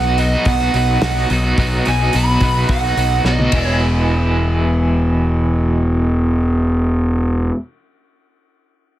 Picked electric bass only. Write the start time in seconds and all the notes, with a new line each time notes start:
Already playing: B1
0.46 B1
0.74 B1
1.30 B1
1.58 B1
1.87 B1
2.14 B1
2.41 B1
2.69 B1
2.97 B1
3.24 B1
3.53 E1